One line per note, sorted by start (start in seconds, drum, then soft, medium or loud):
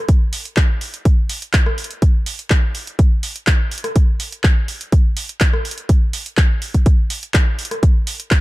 0.09 kick loud
0.09 closed hi-hat medium
0.33 open hi-hat loud
0.45 closed hi-hat soft
0.57 kick loud
0.57 clap loud
0.81 open hi-hat medium
0.94 closed hi-hat soft
1.05 kick loud
1.05 closed hi-hat medium
1.29 open hi-hat loud
1.42 closed hi-hat soft
1.53 kick loud
1.53 clap loud
1.53 closed hi-hat medium
1.66 cross-stick medium
1.78 open hi-hat medium
1.84 closed hi-hat medium
1.91 closed hi-hat soft
2.02 kick loud
2.02 closed hi-hat medium
2.26 open hi-hat medium
2.39 closed hi-hat soft
2.50 kick loud
2.50 clap loud
2.75 open hi-hat medium
2.87 closed hi-hat soft
2.99 kick loud
2.99 closed hi-hat medium
3.23 open hi-hat medium
3.36 closed hi-hat soft
3.47 kick loud
3.47 clap loud
3.47 closed hi-hat medium
3.71 open hi-hat medium
3.78 closed hi-hat medium
3.84 cross-stick medium
3.84 closed hi-hat medium
3.96 kick loud
3.96 closed hi-hat medium
4.20 open hi-hat loud
4.32 closed hi-hat soft
4.44 kick loud
4.44 clap loud
4.68 open hi-hat medium
4.81 closed hi-hat soft
4.92 kick loud
4.92 closed hi-hat medium
5.17 open hi-hat medium
5.29 closed hi-hat medium
5.40 kick loud
5.40 clap loud
5.40 closed hi-hat medium
5.53 cross-stick medium
5.65 open hi-hat medium
5.71 closed hi-hat medium
5.78 closed hi-hat soft
5.89 kick loud
5.89 closed hi-hat medium
6.13 open hi-hat loud
6.26 closed hi-hat medium
6.37 kick loud
6.37 clap loud
6.37 closed hi-hat soft
6.62 open hi-hat medium
6.74 kick medium
6.74 closed hi-hat medium
6.86 kick loud
6.86 closed hi-hat medium
7.10 open hi-hat loud
7.23 closed hi-hat medium
7.34 kick loud
7.34 clap loud
7.34 closed hi-hat medium
7.59 open hi-hat medium
7.65 closed hi-hat medium
7.71 cross-stick medium
7.71 closed hi-hat medium
7.83 kick loud
7.83 closed hi-hat medium
8.07 open hi-hat loud
8.20 closed hi-hat medium
8.31 kick loud
8.31 clap loud